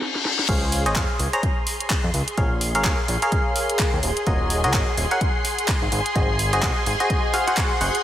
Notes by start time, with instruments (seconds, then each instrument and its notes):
Already playing: reverse cymbal
0.01 snare
0.15 snare
0.25 snare
0.39 snare
0.49 analog synth bass C#2, string machine G#4 C6, fm electric piano G#4 C5 C#5 F5, kick, closed hi-hat, crash
0.72 open hi-hat
0.86 analog synth bass G#1, fm electric piano G#4 C5 C#5 D#5, closed hi-hat
0.96 analog synth bass F2, fm electric piano G#4 C5 C#5 F5, kick, clap, closed hi-hat
1.19 analog synth bass C#2, open hi-hat
1.33 fm electric piano G#4 C5 C#5 A#5, closed hi-hat
1.43 kick, closed hi-hat
1.67 open hi-hat
1.80 closed hi-hat
1.90 kick, clap, closed hi-hat
2.04 analog synth bass F2
2.14 analog synth bass C#2, open hi-hat
2.28 closed hi-hat
2.38 analog synth bass A#1, fm electric piano G#4 A#4 C#5 F5, kick, closed hi-hat
2.61 open hi-hat
2.75 analog synth bass G#1, fm electric piano G#4 A#4 C#5 F5, closed hi-hat
2.84 analog synth bass D#2, fm electric piano G#4 A#4 C#5 F5, kick, clap, closed hi-hat
3.08 analog synth bass A#1, open hi-hat
3.22 fm electric piano G#4 A#4 C#5 F5, closed hi-hat
3.32 kick, closed hi-hat
3.56 open hi-hat
3.70 closed hi-hat
3.79 kick, clap, closed hi-hat
3.93 analog synth bass D#2
4.03 analog synth bass D#1, open hi-hat
4.17 closed hi-hat
4.27 analog synth bass D#1, fm electric piano F#4 A#4 C#5 D#5, kick, closed hi-hat
4.50 open hi-hat
4.64 analog synth bass C#2, fm electric piano F#4 A#4 C#5 D#5, closed hi-hat
4.74 analog synth bass G#1, fm electric piano F#4 C#5 D#5, kick, clap, closed hi-hat
4.97 analog synth bass D#1, open hi-hat
5.11 fm electric piano F#4 A#4 C#5 F#5, closed hi-hat
5.21 kick, closed hi-hat
5.45 open hi-hat
5.59 closed hi-hat
5.68 kick, clap, closed hi-hat
5.82 analog synth bass G#1
5.92 analog synth bass G#1, open hi-hat
6.06 closed hi-hat
6.15 analog synth bass G#1, fm electric piano F#4 G#4 C5 D#5, kick, closed hi-hat
6.39 open hi-hat
6.53 analog synth bass F#1, fm electric piano F#4 G#4 C5 D#5, closed hi-hat
6.62 analog synth bass C2, fm electric piano F#4 G#4 C5 D#5, kick, clap, closed hi-hat
6.86 analog synth bass G#1, open hi-hat
7.00 fm electric piano F#4 G#4 C5 D#5, closed hi-hat
7.10 kick, closed hi-hat
7.34 fm electric piano F#4 G#4 C5 F5, open hi-hat
7.47 fm electric piano F#4 G#4 C5 F#5, closed hi-hat
7.57 kick, clap, closed hi-hat
7.81 analog synth bass F#1, fm electric piano F#4 G#4 C5 F#5, open hi-hat
7.95 closed hi-hat